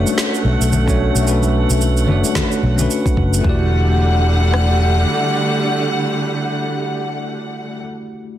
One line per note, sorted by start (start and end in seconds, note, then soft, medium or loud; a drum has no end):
0.00 0.86 A3 medium
0.00 3.41 A3 medium
0.00 0.87 C#4 medium
0.00 0.88 D4 medium
0.00 0.89 F#4 medium
0.00 1.30 B4 medium
0.00 0.84 C#5 medium
0.00 0.86 D5 medium
0.00 3.46 F#5 medium
0.06 high conga medium
0.06 shaker medium
0.18 snare medium
0.18 shaker soft
0.34 shaker soft
0.44 0.57 B1 medium
0.44 high conga medium
0.60 1.10 B1 medium
0.60 shaker medium
0.72 low conga medium
0.72 shaker soft
0.86 1.21 A3 medium
0.86 1.23 C#4 medium
0.86 1.23 D4 medium
0.86 1.24 F#4 medium
0.86 1.24 C#5 medium
0.86 kick medium
0.86 high conga medium
0.86 shaker soft
1.15 1.65 B1 medium
1.15 shaker medium
1.22 2.03 A3 medium
1.22 2.04 C#4 medium
1.22 2.05 D4 medium
1.27 2.06 F#4 medium
1.27 2.07 B4 medium
1.27 shaker soft
1.42 high conga medium
1.42 shaker soft
1.70 2.08 B1 medium
1.70 shaker medium
1.81 high conga medium
1.81 shaker soft
1.97 shaker soft
2.05 2.21 F#1 medium
2.05 2.73 A3 medium
2.05 2.75 D4 medium
2.05 2.74 C#5 medium
2.05 low conga medium
2.10 2.76 F#4 medium
2.10 2.77 D5 medium
2.23 high conga medium
2.23 shaker medium
2.35 kick soft
2.35 snare medium
2.35 low conga medium
2.35 shaker soft
2.52 shaker soft
2.63 2.86 B1 medium
2.63 high conga soft
2.75 3.37 A3 medium
2.75 3.41 C#4 medium
2.75 3.42 D4 medium
2.75 low conga medium
2.79 3.42 F#4 medium
2.79 3.43 B4 medium
2.79 shaker medium
2.91 shaker soft
3.05 kick medium
3.05 high conga medium
3.05 shaker soft
3.17 3.40 F#1 medium
3.17 kick medium
3.34 shaker medium
3.39 7.74 A3 medium
3.39 7.77 E4 medium
3.44 5.04 E1 medium
3.44 7.80 D3 medium
3.44 7.80 G3 medium
3.44 7.80 A3 medium
3.44 7.79 F#4 medium
3.44 7.82 G4 medium
3.44 7.80 F#5 medium
3.44 kick loud
3.49 7.85 D5 medium
4.54 cross-stick soft